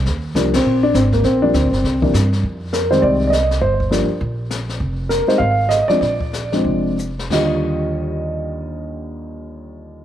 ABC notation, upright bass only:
X:1
M:4/4
L:1/8
Q:"Swing" 1/4=203
K:Eb
V:1 name="Upright bass" clef=bass
E,,2 C,,2 B,,,2 A,,,2 | B,,,2 (3D,, B,,, G,,, C,,2 G,,2 | F,,4 C,,4 | G,,,3 z B,,,4 |
F,,,3 z A,,,3 z | B,,,4 F,,,4 | E,,8- | E,,8 |]